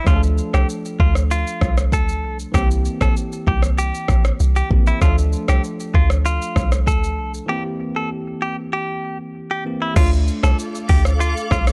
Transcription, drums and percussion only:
0.07 kick loud
0.07 cross-stick medium
0.07 shaker medium
0.23 shaker medium
0.38 shaker medium
0.54 cross-stick loud
0.54 shaker soft
0.69 shaker medium
0.85 shaker medium
1.00 kick loud
1.15 cross-stick medium
1.15 shaker medium
1.31 shaker medium
1.47 shaker medium
1.61 kick loud
1.61 cross-stick loud
1.61 shaker soft
1.77 cross-stick medium
1.77 shaker medium
1.92 kick medium
1.92 shaker medium
2.09 shaker medium
2.39 shaker soft
2.54 kick loud
2.54 cross-stick medium
2.54 shaker medium
2.71 shaker medium
2.85 shaker medium
3.01 kick medium
3.01 cross-stick loud
3.01 shaker soft
3.17 shaker medium
3.32 shaker medium
3.47 kick loud
3.62 cross-stick medium
3.62 shaker medium
3.78 shaker medium
3.94 shaker medium
4.08 kick medium
4.08 cross-stick medium
4.08 shaker soft
4.24 cross-stick medium
4.24 shaker medium
4.40 shaker medium
4.56 shaker medium
4.71 kick loud
4.87 shaker soft
5.02 kick loud
5.02 cross-stick medium
5.02 shaker medium
5.18 shaker medium
5.33 shaker medium
5.48 cross-stick loud
5.48 shaker soft
5.64 shaker medium
5.80 shaker medium
5.94 kick loud
6.10 cross-stick medium
6.10 shaker medium
6.26 shaker medium
6.42 shaker medium
6.56 kick medium
6.56 cross-stick medium
6.56 shaker soft
6.72 cross-stick medium
6.72 shaker medium
6.87 kick medium
6.87 shaker medium
7.04 shaker soft
7.34 shaker soft
9.96 kick loud
9.96 cross-stick loud
9.96 crash loud
9.96 shaker medium
10.13 shaker medium
10.28 shaker medium
10.43 cross-stick loud
10.43 shaker soft
10.59 shaker medium
10.75 shaker medium
10.89 kick loud
10.89 open hi-hat medium
11.05 cross-stick medium
11.05 shaker medium
11.21 shaker medium
11.37 shaker medium
11.51 kick loud
11.51 cross-stick medium
11.51 shaker soft
11.67 cross-stick loud
11.67 shaker medium

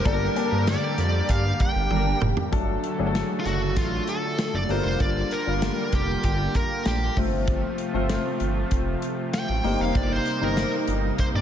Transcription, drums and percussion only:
0.05 kick loud
0.05 closed hi-hat medium
0.36 closed hi-hat medium
0.67 snare loud
0.67 closed hi-hat medium
0.67 tambourine medium
0.98 closed hi-hat medium
1.29 kick medium
1.29 closed hi-hat loud
1.60 kick medium
1.60 closed hi-hat medium
1.91 high tom medium
2.22 mid tom loud
2.37 floor tom medium
2.53 kick loud
2.53 closed hi-hat medium
2.84 closed hi-hat medium
3.15 snare loud
3.15 closed hi-hat medium
3.45 closed hi-hat medium
3.76 kick medium
3.76 closed hi-hat medium
4.07 closed hi-hat medium
4.38 snare loud
4.38 closed hi-hat medium
4.69 open hi-hat medium
5.00 kick loud
5.00 closed hi-hat medium
5.31 closed hi-hat medium
5.62 snare loud
5.62 closed hi-hat medium
5.92 kick loud
5.92 closed hi-hat medium
6.23 kick medium
6.23 closed hi-hat medium
6.54 kick medium
6.54 closed hi-hat medium
6.85 snare loud
6.85 closed hi-hat medium
7.16 kick medium
7.16 open hi-hat medium
7.47 kick loud
7.47 closed hi-hat medium
7.78 closed hi-hat medium
8.10 snare loud
8.10 closed hi-hat medium
8.40 closed hi-hat medium
8.71 kick medium
8.71 closed hi-hat medium
9.02 closed hi-hat medium
9.33 snare loud
9.33 closed hi-hat medium
9.64 open hi-hat medium
9.95 kick loud
9.95 closed hi-hat medium
10.26 closed hi-hat medium
10.57 snare loud
10.57 closed hi-hat medium
10.88 closed hi-hat medium
11.18 kick medium
11.18 closed hi-hat medium

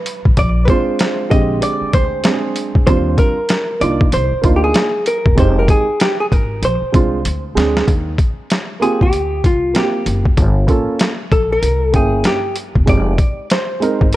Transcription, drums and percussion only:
0.06 closed hi-hat medium
0.25 kick medium
0.37 kick loud
0.37 closed hi-hat medium
0.68 kick loud
0.68 closed hi-hat medium
0.99 snare loud
0.99 closed hi-hat medium
1.31 kick medium
1.31 closed hi-hat medium
1.62 closed hi-hat medium
1.93 kick medium
1.93 closed hi-hat medium
2.24 snare loud
2.24 closed hi-hat medium
2.56 closed hi-hat medium
2.75 kick medium
2.87 kick medium
2.87 closed hi-hat medium
3.18 kick loud
3.18 closed hi-hat medium
3.49 snare loud
3.49 closed hi-hat loud
3.81 closed hi-hat medium
4.01 kick medium
4.12 closed hi-hat medium
4.44 kick medium
4.44 closed hi-hat medium
4.74 snare loud
4.74 closed hi-hat medium
5.06 closed hi-hat medium
5.26 kick medium
5.38 kick medium
5.38 closed hi-hat medium
5.68 kick medium
5.68 closed hi-hat medium
6.00 snare loud
6.00 closed hi-hat medium
6.32 kick medium
6.32 closed hi-hat medium
6.63 closed hi-hat medium
6.94 kick medium
6.94 closed hi-hat medium
7.25 closed hi-hat medium
7.57 snare medium
7.57 closed hi-hat medium
7.77 snare medium
7.88 kick medium
7.88 closed hi-hat medium
8.18 kick medium
8.18 closed hi-hat medium
8.50 snare medium
8.50 closed hi-hat medium
8.83 closed hi-hat soft
9.01 kick medium
9.13 closed hi-hat medium
9.44 kick medium
9.44 closed hi-hat medium
9.75 snare loud
9.75 closed hi-hat medium
10.06 closed hi-hat medium
10.25 kick medium
10.37 kick medium
10.37 closed hi-hat medium
10.68 kick medium
10.68 closed hi-hat medium
10.99 snare loud
10.99 closed hi-hat loud
11.32 kick loud
11.32 closed hi-hat medium
11.63 closed hi-hat medium
11.94 kick medium
11.94 closed hi-hat medium
12.24 snare medium
12.24 closed hi-hat medium
12.56 closed hi-hat medium
12.75 kick medium
12.87 kick medium
12.87 closed hi-hat medium
13.18 kick medium
13.18 closed hi-hat medium
13.50 snare loud
13.50 closed hi-hat medium
13.82 closed hi-hat medium
14.01 kick medium
14.13 closed hi-hat medium

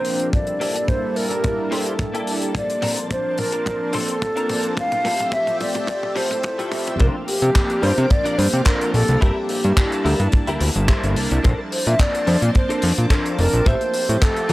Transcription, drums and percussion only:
0.05 open hi-hat medium
0.20 closed hi-hat medium
0.33 kick loud
0.33 closed hi-hat medium
0.33 mid tom medium
0.47 closed hi-hat medium
0.61 open hi-hat loud
0.76 closed hi-hat medium
0.88 kick loud
0.88 closed hi-hat medium
0.88 mid tom medium
1.16 open hi-hat medium
1.31 closed hi-hat medium
1.44 kick loud
1.44 closed hi-hat medium
1.44 mid tom medium
1.72 open hi-hat loud
1.86 closed hi-hat medium
1.99 kick loud
1.99 closed hi-hat medium
1.99 mid tom medium
2.15 closed hi-hat medium
2.27 open hi-hat loud
2.42 closed hi-hat medium
2.55 kick loud
2.55 closed hi-hat medium
2.55 mid tom medium
2.70 closed hi-hat medium
2.82 open hi-hat loud
2.82 mid tom medium
2.97 closed hi-hat medium
3.11 kick loud
3.11 closed hi-hat medium
3.11 mid tom medium
3.38 open hi-hat medium
3.38 mid tom medium
3.52 closed hi-hat medium
3.66 kick loud
3.66 closed hi-hat medium
3.66 mid tom medium
3.93 open hi-hat loud
3.93 mid tom medium
4.08 closed hi-hat medium
4.22 kick loud
4.22 closed hi-hat medium
4.22 mid tom medium
4.37 closed hi-hat soft
4.49 open hi-hat loud
4.49 mid tom medium
4.63 closed hi-hat medium
4.77 kick loud
4.77 closed hi-hat medium
4.77 mid tom medium
4.92 closed hi-hat soft
4.92 mid tom medium
5.05 open hi-hat loud
5.05 mid tom medium
5.19 closed hi-hat medium
5.19 mid tom medium
5.32 kick loud
5.32 closed hi-hat medium
5.32 mid tom loud
5.47 closed hi-hat soft
5.47 mid tom medium
5.60 open hi-hat loud
5.60 mid tom medium
5.75 closed hi-hat medium
5.75 mid tom medium
5.87 kick loud
5.87 closed hi-hat medium
5.87 mid tom loud
6.03 mid tom medium
6.16 open hi-hat loud
6.16 mid tom loud
6.31 closed hi-hat medium
6.31 mid tom loud
6.43 kick loud
6.43 closed hi-hat medium
6.43 mid tom loud
6.59 closed hi-hat medium
6.59 mid tom medium
6.72 open hi-hat loud
6.72 mid tom loud
6.87 closed hi-hat medium
6.87 mid tom medium
7.00 kick loud
7.00 closed hi-hat medium
7.28 open hi-hat loud
7.42 closed hi-hat medium
7.56 kick loud
7.56 clap loud
7.56 closed hi-hat medium
7.70 closed hi-hat medium
7.83 open hi-hat medium
7.98 closed hi-hat medium
8.10 kick loud
8.10 closed hi-hat medium
8.25 closed hi-hat medium
8.39 open hi-hat loud
8.53 closed hi-hat medium
8.65 kick loud
8.65 clap loud
8.65 closed hi-hat medium
8.81 closed hi-hat medium
8.94 open hi-hat medium
9.08 closed hi-hat medium
9.22 kick loud
9.22 closed hi-hat medium
9.49 open hi-hat loud
9.64 closed hi-hat medium
9.77 kick loud
9.77 clap loud
9.77 closed hi-hat medium
9.92 closed hi-hat medium
10.06 open hi-hat loud
10.20 closed hi-hat medium
10.32 kick loud
10.32 closed hi-hat medium
10.47 closed hi-hat medium
10.61 open hi-hat loud
10.75 closed hi-hat medium
10.88 kick loud
10.88 clap loud
10.88 closed hi-hat medium
11.04 closed hi-hat medium
11.16 open hi-hat loud
11.31 closed hi-hat medium
11.44 kick loud
11.44 closed hi-hat medium
11.72 open hi-hat loud
11.86 closed hi-hat medium
11.99 kick loud
11.99 clap loud
11.99 closed hi-hat medium
12.15 closed hi-hat medium
12.27 open hi-hat loud
12.42 closed hi-hat medium
12.55 kick loud
12.55 closed hi-hat medium
12.70 closed hi-hat medium
12.82 open hi-hat loud
12.98 closed hi-hat medium
13.10 kick loud
13.10 clap loud
13.10 closed hi-hat medium
13.26 closed hi-hat medium
13.39 open hi-hat loud
13.53 closed hi-hat medium
13.66 kick loud
13.66 closed hi-hat medium
13.81 closed hi-hat soft
13.94 open hi-hat loud
14.09 closed hi-hat medium
14.22 kick loud
14.22 clap loud
14.22 closed hi-hat medium
14.36 closed hi-hat soft
14.49 open hi-hat loud

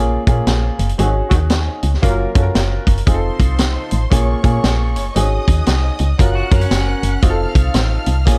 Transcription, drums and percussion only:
0.27 kick loud
0.27 closed hi-hat medium
0.47 snare loud
0.47 closed hi-hat medium
0.79 closed hi-hat medium
0.89 closed hi-hat medium
0.99 closed hi-hat medium
1.31 kick medium
1.31 closed hi-hat medium
1.50 snare loud
1.50 closed hi-hat medium
1.83 closed hi-hat medium
1.94 snare soft
2.03 kick medium
2.03 closed hi-hat medium
2.35 kick loud
2.35 closed hi-hat medium
2.55 snare loud
2.55 closed hi-hat medium
2.87 kick medium
2.87 closed hi-hat medium
2.97 closed hi-hat medium
3.07 kick loud
3.07 closed hi-hat medium
3.40 kick medium
3.40 closed hi-hat medium
3.58 snare loud
3.58 closed hi-hat medium
3.91 closed hi-hat medium
4.12 kick medium
4.12 closed hi-hat medium
4.44 kick loud
4.44 closed hi-hat medium
4.64 snare medium
4.64 closed hi-hat medium
4.96 closed hi-hat medium
5.16 closed hi-hat medium
5.48 kick medium
5.48 closed hi-hat medium
5.66 snare loud
5.66 closed hi-hat medium
5.99 closed hi-hat medium
6.19 kick medium
6.19 closed hi-hat medium
6.51 kick loud
6.51 closed hi-hat medium
6.61 closed hi-hat medium
6.71 snare loud
6.71 closed hi-hat medium
7.03 closed hi-hat medium
7.23 kick loud
7.23 closed hi-hat medium
7.55 kick loud
7.55 closed hi-hat medium
7.74 snare loud
7.74 closed hi-hat medium
8.06 closed hi-hat medium
8.27 kick medium
8.27 closed hi-hat loud

